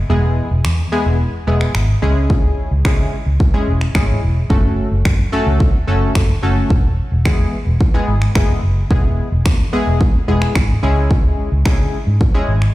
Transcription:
0.10 E1 G#3 B3 E4 G#4
0.51 E1
0.65 E2, finger snap
0.92 G#3 B3 E4 G#4
1.06 E1
1.47 E1 G#3 B3 E4 G#4
1.61 finger snap
1.75 G#1, finger snap
2.02 C#2 G#3 C#4 E4 G#4
2.30 kick
2.71 C#2
2.85 C#3 G#3 C#4 E4 G#4, finger snap, kick
3.26 C#2
3.40 kick
3.54 G#3 C#4 E4 G#4
3.68 E1
3.81 finger snap
3.95 G#1 G#3 C#4 E4 G#4, finger snap, kick
4.23 E1
4.50 F#1 A3 C#4 F#4 A4, kick
4.92 F#1
5.05 F#2, finger snap, kick
5.32 A3 C#4 F#4 A4
5.47 C#2
5.60 kick
5.87 F#1 A3 C#4 F#4 A4
6.15 F#1, finger snap, kick
6.43 F#1 A3 C#4 F#4 A4
6.70 E1, kick
7.12 E1
7.25 E2 G#3 B3 E4 G#4, finger snap, kick
7.67 E1
7.81 kick
7.94 G#3 B3 E4 G#4
8.08 G#1
8.22 finger snap
8.35 F#1 G#3 B3 E4 G#4, finger snap, kick
8.63 F#1
8.90 E1 G#3 B3 E4 G#4, kick
9.32 E1
9.46 E2, finger snap, kick
9.73 G#3 B3 E4 G#4
9.87 E1
10.01 kick
10.28 E1 G#3 B3 E4 G#4
10.42 finger snap
10.55 G#1, finger snap, kick
10.83 C#2 G#3 C#4 E4 G#4
11.11 kick
11.52 C#2
11.65 C#3 G#3 C#4 E4 G#4, finger snap, kick
12.07 G#2
12.21 kick
12.34 G#3 C#4 E4 G#4
12.48 G#1
12.62 finger snap

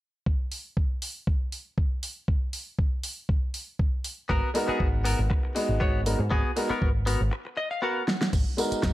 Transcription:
0.26 kick
0.52 open hi-hat
0.77 kick
1.02 open hi-hat
1.27 kick
1.52 open hi-hat
1.78 kick
2.03 open hi-hat
2.28 kick
2.53 open hi-hat
2.79 kick
3.03 open hi-hat
3.29 kick
3.54 open hi-hat
3.79 kick
4.04 open hi-hat
4.29 G#1 B3 F#4 A#4, kick
4.54 G#3 B3 D#4 F#4 A#4, open hi-hat
4.68 B3 F#4 G#4, muted picked electric bass stroke
4.80 G#1, kick
5.04 B3 F#4 A#4, open hi-hat
5.19 G#1
5.30 muted clean electric guitar stroke, kick
5.43 muted clean electric guitar stroke
5.55 G#3 B3 D#4 F#4, muted clean electric guitar stroke, open hi-hat
5.69 G#1
5.80 G#1 B3 F#4 C#5, kick
6.05 G#3 B3 D#4 F#4 A#4, open hi-hat
6.19 G#2, muted clean electric guitar stroke
6.30 G#1 B3 F#4 G#4, kick
6.56 G#3 B3 D#4 F#4 A#4, open hi-hat
6.69 B3 F#4 A#4, muted picked electric bass stroke
6.82 G#1, kick
7.06 B3 F#4 A#4, open hi-hat
7.21 G#1
7.31 muted clean electric guitar stroke
7.45 muted clean electric guitar stroke
7.57 D#5, muted clean electric guitar stroke
7.71 F5
7.82 B3 F#4 A#4 F#5
8.08 snare
8.21 muted clean electric guitar stroke, snare
8.33 G#1, kick, closed hi-hat, tambourine, crash
8.57 G#3 B3 D#4 F#4 A#4, open hi-hat, tambourine
8.72 muted picked electric bass stroke, closed hi-hat, tambourine
8.83 G#1, kick, snare, closed hi-hat, tambourine

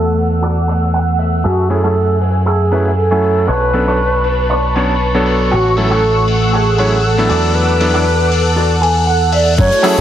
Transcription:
Already playing: E2 A3 F#4 A4 E5 F#5 E6
0.18 open hi-hat
0.42 F#4 A4 D5
0.68 muted clean electric guitar stroke, open hi-hat
0.82 muted clean electric guitar stroke
0.94 F#5
1.19 E5, open hi-hat
1.44 F#2 F#4 G#4 A4 E5 G#5
1.70 F#3 A3 C#4 E4 G#4 A4, open hi-hat
1.83 F#3 A3 C#4 E4 G#4 A4 E5
2.21 open hi-hat
2.46 G#4 A4 E5
2.71 F#3 A3 C#4 E4 B4, muted clean electric guitar stroke, open hi-hat
2.85 muted clean electric guitar stroke
2.97 A4
3.11 F#3 A3 C#4 E4 G#5
3.22 open hi-hat
3.47 B1 D4 A4 B4 C#5 A5 C#6
3.73 F#3 B3 C#4 D4 A4, open hi-hat
3.87 F#3 B3 C#4 D4 A4 C#5
4.24 open hi-hat
4.49 D4 A4 C#5
4.75 F#3 B3 C#4 D4 C#5, muted clean electric guitar stroke, open hi-hat
4.89 muted clean electric guitar stroke
5.14 F#3 B3 D4 A4 C#5
5.26 open hi-hat
5.51 A1 A3 F#4 A4 C#5 F#5 E6
5.77 F#3 A3 C#4 E4 A4, open hi-hat
5.90 F#3 A3 C#4 E4 F#4 A4 C#5
6.28 open hi-hat
6.53 F#4 G#4 A4 C#5
6.78 F#3 A3 C#4 E4 C#5, muted clean electric guitar stroke, open hi-hat
6.92 muted clean electric guitar stroke
7.05 A4
7.17 F#3 B3 D4 E4 A4
7.29 E2 F#4 A4 D5 D6, open hi-hat
7.55 B4
7.80 F#3 B3 D4 E4 A4, open hi-hat
7.93 F#3 B3 D4 E4 F#4 A4 D5
8.32 open hi-hat
8.56 F#4 A4 D5
8.81 G#5, muted clean electric guitar stroke, open hi-hat
8.95 muted clean electric guitar stroke
9.07 F#5
9.32 D5 E5, open hi-hat
9.58 F#2 A3 E4 F#4 C#5, kick, closed hi-hat, crash
9.72 closed hi-hat
9.83 F#3 A3 C#4 E4 F#4 G#4 A4 E5, open hi-hat
9.97 F#3 A3 C#4, closed hi-hat

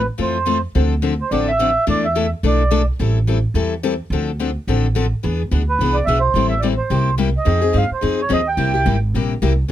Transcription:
0.18 F2 E3 A3 C4 F4 A4 C5
0.46 E3 A3 C4 F4 A4
0.75 D2 D3 F3 C4 D4 A4
1.02 D3 F3 C4 D4 A4
1.21 C5
1.31 A1 D3 F3 C4 D4 A4 D5
1.48 E5
1.59 D3 F3 C4 D4 A4
1.87 E2 E3 A3 D4 E4 A4 D5
2.05 E5
2.15 E3 A3 D4 E4 A4
2.43 B1 E3 A3 D4 E4 A4 D5
2.71 E3 A3 D4 E4 A4
2.99 A1 E3 G3 C4 E4 A4
3.27 E3 G3 C4 E4 A4
3.54 E2 E3 G3 C4 E4 A4
3.83 E3 G3 C4 E4 A4
4.10 D2 D3 F3 C4 D4 A4
4.39 D3 F3 C4 D4 A4
4.67 A1 D3 F3 C4 D4 A4
4.95 D3 F3 C4 D4 A4
5.23 E2 E3 B3 D4 G#4
5.51 D2 E3 B3 D4 G#4
5.69 B4
5.79 C2 E3 B3 D4 G#4
5.94 D5
6.05 B1 E3 B3 D4 G#4 E5
6.20 C5
6.34 A1 E3 G3 C4 E4 A4
6.49 E5
6.60 E3 G3 C4 E4 A4 D5
6.77 C5
6.90 C2 C3 G3 A#3 E4 G4
7.18 C3 G3 A#3 E4 G4
7.38 D#5
7.45 F2 F3 C4 D#4 G#4
7.61 C4 D#4 G#4
7.73 G2 F3 C4 D#4 G#4
7.77 F5
7.91 C5, muted upright bass stroke
8.01 F2 F3 C4 D#4 G#4
8.22 C#5
8.29 D#2 F3 C4 D#4 G#4
8.33 D#5
8.48 G5
8.57 C2 C3 G3 A#3 E4 G4
8.74 A#3 E4 G4
8.86 G#1 C3 G3 A#3 E4 G4
9.14 A#1 C3 G3 A#3 E4 G4
9.42 C2 C3 G3 A#3 E4 G4
9.68 C#3

